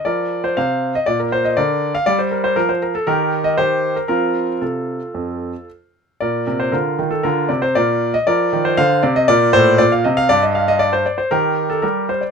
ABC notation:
X:1
M:4/4
L:1/16
Q:1/4=118
K:Bb
V:1 name="Grand piano"
[Bd]3 c [cf]3 e d B c e [Bd]3 f | d c B c B c B A [GB]3 e [Gc]3 B | [FB]4 [FA]8 z4 | [Bd]2 B c [FB]3 A [FB]2 d c [Bd]3 e |
[Bd]3 c [cf]2 d e [Bd]2 [Ac]2 d f e f | d e f e d c d c [GB]3 A [GB]2 c d |]
V:2 name="Grand piano" clef=bass
F,4 C,4 B,,4 D,4 | G,4 F,4 E,4 E,4 | [F,C]4 C,4 F,,4 z4 | B,,2 C,2 D,2 E,2 D,2 C,2 B,,4 |
F,2 E,2 D,2 C,2 B,,2 A,,2 B,,2 C,2 | G,,8 E,4 G,4 |]